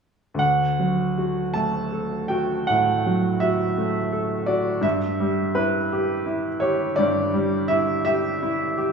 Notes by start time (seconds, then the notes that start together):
0.34 D2
0.39 F#5
0.79 F#3
1.18 F#4
1.54 A3 A5
1.92 A4
2.28 F#4 G5
2.67 A2 F#5
3.06 F#3
3.40 F#4 E5
3.78 A3
4.12 A4
4.46 F#4 D5
4.81 G2 E5
5.20 G3
5.55 E4 B4
5.92 G4
6.26 E4
6.60 G4 C#5
6.96 G2 D5
7.34 G3
7.68 E4 E5
8.05 G4 E5
8.43 E4
8.78 G4